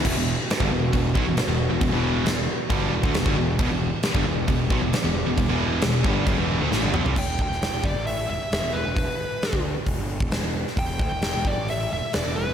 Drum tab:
CC |x---x---x---x---|x---x---x---x---|x---x---x---x---|x---x---x-------|
HH |----------------|----------------|----------------|----------------|
SD |----o-------o---|----o-------o---|----o-------o---|----o-------o---|
T2 |----------------|----------------|----------------|--------------o-|
FT |----------------|----------------|----------------|---------------o|
BD |o----o--o-o-----|o-------o--o-o--|o----o--o-o-----|o-----o-o-------|

CC |x---------------|----------------|----------------|
HH |----o---o---o---|o---o---o---o---|o---o---o---o---|
SD |---oo-------o---|----o-------o--o|----o-------o---|
T2 |----------------|----------------|----------------|
FT |----------------|----------------|----------------|
BD |o-o---o---------|o----o--o--o----|o-o---o---------|